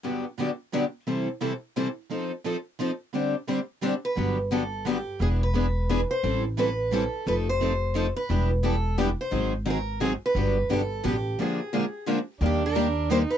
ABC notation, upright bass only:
X:1
M:3/4
L:1/8
Q:"Swing" 1/4=175
K:G
V:1 name="Upright bass" clef=bass
z6 | z6 | z6 | z6 |
G,,,6 | E,,,6 | A,,,6 | =F,,,6 |
E,,,6 | _A,,,6 | G,,,2 G,,,2 A,,,2 | z6 |
[K:Eb] E,,6 |]